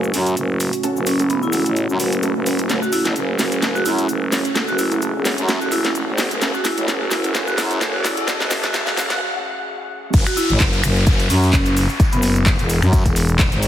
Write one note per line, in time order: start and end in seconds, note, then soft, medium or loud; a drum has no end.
0.00 0.12 F#1 medium
0.00 10.10 A3 medium
0.00 10.10 C#4 medium
0.00 2.68 F#4 medium
0.00 cabasa soft
0.14 0.35 F#2 medium
0.14 open hi-hat loud
0.14 cabasa medium
0.26 closed hi-hat medium
0.26 cabasa soft
0.37 0.71 F#1 medium
0.37 closed hi-hat soft
0.37 cabasa medium
0.60 open hi-hat medium
0.60 cabasa medium
0.73 closed hi-hat medium
0.73 cabasa soft
0.83 0.95 A3 loud
0.83 0.95 C#4 medium
0.83 0.95 F#4 medium
0.83 0.95 A4 loud
0.83 closed hi-hat soft
0.83 cabasa medium
0.96 1.41 F#1 loud
0.96 cabasa soft
1.06 1.25 C#4 medium
1.06 open hi-hat loud
1.06 cabasa medium
1.19 1.29 A3 loud
1.19 1.29 C#4 medium
1.19 1.29 F#4 medium
1.19 1.29 A4 loud
1.19 closed hi-hat medium
1.19 cabasa soft
1.30 1.40 B3 medium
1.30 closed hi-hat soft
1.30 cabasa soft
1.43 1.64 E1 medium
1.43 1.77 E4 medium
1.43 cabasa soft
1.52 1.64 A3 medium
1.52 1.64 C#4 medium
1.52 1.64 F#4 medium
1.52 1.64 A4 medium
1.52 open hi-hat medium
1.52 cabasa loud
1.66 1.87 A1 medium
1.66 closed hi-hat medium
1.66 cabasa soft
1.76 closed hi-hat medium
1.76 cabasa soft
1.89 1.98 F#2 medium
1.89 cabasa soft
2.00 2.34 F#1 loud
2.00 2.11 A3 medium
2.00 2.11 C#4 medium
2.00 2.11 F#4 medium
2.00 2.11 B4 medium
2.00 open hi-hat loud
2.00 cabasa loud
2.12 closed hi-hat medium
2.12 cabasa soft
2.23 2.34 A3 medium
2.23 2.34 C#4 medium
2.23 2.34 F#4 medium
2.23 2.34 A4 loud
2.23 closed hi-hat soft
2.23 cabasa medium
2.36 2.68 F#1 loud
2.46 2.57 A3 medium
2.46 2.57 C#4 medium
2.46 2.57 F#4 medium
2.46 2.57 B4 medium
2.46 open hi-hat medium
2.46 cabasa medium
2.59 closed hi-hat medium
2.59 cabasa soft
2.69 2.80 F#1 loud
2.69 2.81 A3 medium
2.69 2.81 C#4 medium
2.69 2.81 F#4 medium
2.69 10.12 G#4 medium
2.69 2.81 A4 loud
2.69 snare soft
2.69 closed hi-hat soft
2.69 riser medium
2.69 cabasa medium
2.82 2.91 F#4 medium
2.82 cabasa soft
2.92 3.11 E4 medium
2.92 open hi-hat loud
2.92 cabasa medium
3.05 3.14 A1 loud
3.05 3.21 A3 medium
3.05 3.21 C#4 medium
3.05 3.21 F#4 medium
3.05 3.21 A4 medium
3.05 snare soft
3.05 closed hi-hat medium
3.05 cabasa soft
3.16 3.38 F#1 medium
3.16 closed hi-hat soft
3.16 cabasa soft
3.39 3.61 F#1 medium
3.39 3.50 A3 medium
3.39 3.50 C#4 medium
3.39 3.50 F#4 medium
3.39 3.50 C#5 medium
3.39 snare medium
3.39 open hi-hat medium
3.39 cabasa medium
3.52 closed hi-hat medium
3.52 cabasa soft
3.62 3.84 F#1 medium
3.62 3.74 A3 medium
3.62 3.74 C#4 medium
3.62 3.74 F#4 medium
3.62 3.74 A4 loud
3.62 snare medium
3.62 closed hi-hat medium
3.62 cabasa soft
3.75 3.84 F#4 medium
3.75 cabasa soft
3.86 4.07 F#2 loud
3.86 4.04 E4 medium
3.86 open hi-hat loud
3.86 cabasa medium
3.98 4.14 A3 medium
3.98 4.14 C#4 medium
3.98 4.14 F#4 medium
3.98 4.14 A4 medium
3.98 closed hi-hat medium
3.98 cabasa soft
4.09 4.43 F#1 medium
4.09 closed hi-hat soft
4.09 cabasa medium
4.32 4.43 A3 medium
4.32 4.43 C#4 medium
4.32 4.43 F#4 medium
4.32 4.43 C#5 medium
4.32 snare medium
4.32 open hi-hat medium
4.32 cabasa medium
4.45 closed hi-hat medium
4.45 cabasa soft
4.56 4.67 A3 medium
4.56 4.67 C#4 medium
4.56 4.67 F#4 medium
4.56 4.67 A4 loud
4.56 snare medium
4.56 closed hi-hat medium
4.56 cabasa soft
4.68 5.13 F#1 medium
4.68 4.77 F#4 medium
4.68 cabasa soft
4.79 4.97 E4 medium
4.79 open hi-hat loud
4.79 cabasa medium
4.92 5.07 A3 medium
4.92 5.07 C#4 medium
4.92 5.07 F#4 medium
4.92 5.07 A4 medium
4.92 closed hi-hat medium
4.92 cabasa soft
5.02 closed hi-hat soft
5.02 cabasa medium
5.15 5.36 E1 loud
5.25 5.36 A3 medium
5.25 5.36 C#4 medium
5.25 5.36 F#4 medium
5.25 5.36 C#5 loud
5.25 snare medium
5.25 open hi-hat medium
5.25 cabasa medium
5.38 5.59 F#2 loud
5.38 closed hi-hat medium
5.38 cabasa soft
5.48 5.60 A3 loud
5.48 5.60 C#4 medium
5.48 5.60 F#4 medium
5.48 5.60 A4 loud
5.48 snare medium
5.48 closed hi-hat medium
5.48 cabasa soft
5.61 6.06 E1 loud
5.61 5.70 F#4 medium
5.61 cabasa soft
5.72 5.90 E4 medium
5.72 open hi-hat loud
5.72 cabasa medium
5.84 6.00 A3 medium
5.84 6.00 C#4 medium
5.84 6.00 F#4 medium
5.84 6.00 A4 medium
5.84 snare medium
5.84 closed hi-hat medium
5.84 cabasa soft
5.95 closed hi-hat soft
5.95 cabasa soft
6.08 6.29 G#1 loud
6.18 6.29 A3 medium
6.18 6.29 C#4 medium
6.18 6.29 F#4 medium
6.18 6.29 C#5 loud
6.18 snare medium
6.18 open hi-hat medium
6.18 cabasa medium
6.31 6.40 F#1 loud
6.31 closed hi-hat medium
6.31 cabasa soft
6.42 6.52 F#1 loud
6.42 6.53 A3 loud
6.42 6.53 C#4 medium
6.42 6.53 F#4 medium
6.42 6.53 A4 loud
6.42 snare medium
6.42 closed hi-hat medium
6.42 cabasa medium
6.54 6.63 F#4 medium
6.54 cabasa soft
6.65 6.83 E4 medium
6.65 snare medium
6.65 open hi-hat loud
6.65 cabasa medium
6.77 6.86 A1 loud
6.77 6.86 A3 medium
6.77 6.86 C#4 medium
6.77 6.86 F#4 medium
6.77 6.86 A4 medium
6.77 closed hi-hat medium
6.77 cabasa soft
6.88 7.10 F#1 medium
6.88 6.99 A3 loud
6.88 6.99 C#4 medium
6.88 6.99 F#4 medium
6.88 6.99 A4 loud
6.88 snare medium
6.88 closed hi-hat medium
6.88 cabasa soft
7.01 7.09 F#4 medium
7.11 7.33 F#1 medium
7.11 7.30 E4 medium
7.11 snare medium
7.11 open hi-hat medium
7.11 cabasa medium
7.24 7.33 A3 medium
7.24 7.33 C#4 medium
7.24 7.33 F#4 medium
7.24 7.33 A4 medium
7.24 closed hi-hat medium
7.24 cabasa soft
7.35 7.56 F#1 loud
7.35 7.46 A3 loud
7.35 7.46 C#4 medium
7.35 7.46 F#4 medium
7.35 7.46 A4 loud
7.35 snare medium
7.35 closed hi-hat medium
7.35 cabasa medium
7.47 7.56 F#4 medium
7.47 cabasa soft
7.58 7.80 F#2 loud
7.58 7.76 E4 medium
7.58 snare medium
7.58 open hi-hat loud
7.58 cabasa medium
7.71 7.80 A3 medium
7.71 7.80 C#4 medium
7.71 7.80 F#4 medium
7.71 7.80 A4 medium
7.71 closed hi-hat medium
7.71 cabasa soft
7.81 8.15 F#1 loud
7.81 7.92 A3 medium
7.81 7.92 C#4 medium
7.81 7.92 F#4 medium
7.81 7.92 A4 loud
7.81 snare medium
7.81 closed hi-hat medium
7.81 cabasa soft
7.94 8.02 F#4 medium
8.04 8.23 E4 medium
8.04 snare medium
8.04 open hi-hat medium
8.04 cabasa medium
8.17 8.26 A3 medium
8.17 8.26 C#4 medium
8.17 8.26 F#4 medium
8.17 8.26 A4 medium
8.17 closed hi-hat medium
8.17 cabasa soft
8.28 8.39 A3 loud
8.28 8.39 C#4 loud
8.28 8.39 F#4 medium
8.28 8.39 A4 loud
8.28 snare medium
8.28 closed hi-hat medium
8.28 cabasa medium
8.40 8.85 F#1 loud
8.40 8.49 F#4 medium
8.40 snare medium
8.40 cabasa soft
8.51 8.62 A3 loud
8.51 8.62 C#4 medium
8.51 8.62 F#4 medium
8.51 8.62 A4 loud
8.51 snare medium
8.51 open hi-hat loud
8.51 cabasa loud
8.63 8.72 F#4 medium
8.63 snare medium
8.63 closed hi-hat medium
8.63 cabasa soft
8.74 8.85 A3 loud
8.74 8.85 C#4 medium
8.74 8.85 F#4 medium
8.74 8.85 A4 loud
8.74 snare loud
8.74 closed hi-hat medium
8.74 cabasa soft
8.87 9.08 E1 loud
8.87 8.95 F#4 medium
8.87 snare medium
8.87 cabasa soft
8.97 9.09 A3 loud
8.97 9.09 C#4 medium
8.97 9.09 F#4 medium
8.97 9.09 A4 loud
8.97 snare loud
8.97 open hi-hat medium
8.97 cabasa medium
9.10 9.21 F#1 medium
9.10 9.19 F#4 loud
9.10 snare medium
9.10 closed hi-hat medium
9.10 cabasa soft
10.14 10.25 F#1 loud
10.14 13.68 A3 medium
10.14 13.68 C#4 medium
10.14 13.68 F#4 medium
10.14 kick loud
10.14 closed hi-hat medium
10.14 crash loud
10.14 tambourine medium
10.14 downlifter medium
10.14 cabasa medium
10.26 10.35 F#4 medium
10.26 finger snap medium
10.26 closed hi-hat soft
10.26 closed hi-hat medium
10.26 cabasa soft
10.37 10.55 E4 medium
10.37 open hi-hat loud
10.37 tambourine medium
10.37 cabasa loud
10.50 10.59 A1 loud
10.50 closed hi-hat soft
10.50 cabasa soft
10.60 10.82 F#1 loud
10.60 kick loud
10.60 snare loud
10.60 clap loud
10.60 closed hi-hat medium
10.60 tambourine medium
10.60 cabasa medium
10.73 snare medium
10.73 closed hi-hat medium
10.83 11.05 F#1 loud
10.83 finger snap medium
10.83 open hi-hat medium
10.83 cabasa loud
10.96 snare soft
10.96 cabasa soft
11.06 11.28 F#1 loud
11.06 kick loud
11.06 closed hi-hat medium
11.06 tambourine medium
11.06 cabasa soft
11.20 closed hi-hat medium
11.20 closed hi-hat soft
11.29 11.52 F#2 loud
11.29 11.77 C#4 medium
11.29 open hi-hat loud
11.29 tambourine medium
11.29 cabasa medium
11.43 closed hi-hat soft
11.43 cabasa soft
11.53 11.87 F#1 loud
11.53 kick loud
11.53 snare loud
11.53 clap loud
11.53 closed hi-hat medium
11.53 tambourine medium
11.53 cabasa medium
11.66 snare soft
11.66 closed hi-hat medium
11.66 cabasa soft
11.77 open hi-hat medium
11.77 tambourine medium
11.77 cabasa loud
11.89 cabasa soft
11.99 kick loud
11.99 closed hi-hat medium
11.99 tambourine medium
11.99 cabasa medium
12.12 12.57 F#1 loud
12.12 12.19 B3 medium
12.12 closed hi-hat medium
12.12 cabasa soft
12.22 12.31 B3 medium
12.22 open hi-hat loud
12.22 tambourine medium
12.22 cabasa loud
12.36 closed hi-hat soft
12.36 cabasa soft
12.46 kick loud
12.46 snare loud
12.46 clap loud
12.46 closed hi-hat medium
12.46 tambourine medium
12.46 cabasa medium
12.59 12.80 E1 medium
12.59 closed hi-hat medium
12.69 open hi-hat loud
12.69 tambourine medium
12.69 cabasa medium
12.82 13.04 F#2 loud
12.82 finger snap medium
12.82 closed hi-hat soft
12.82 cabasa soft
12.93 kick loud
12.93 closed hi-hat medium
12.93 tambourine medium
12.93 cabasa medium
13.06 13.50 E1 loud
13.06 kick medium
13.06 closed hi-hat medium
13.16 open hi-hat loud
13.16 tambourine medium
13.16 cabasa medium
13.28 closed hi-hat soft
13.28 cabasa soft
13.39 kick loud
13.39 snare loud
13.39 clap loud
13.39 closed hi-hat medium
13.39 tambourine medium
13.39 cabasa medium
13.51 13.68 G#1 loud
13.51 snare soft
13.51 closed hi-hat medium
13.51 cabasa soft
13.62 snare soft
13.62 open hi-hat loud
13.62 tambourine medium
13.62 cabasa loud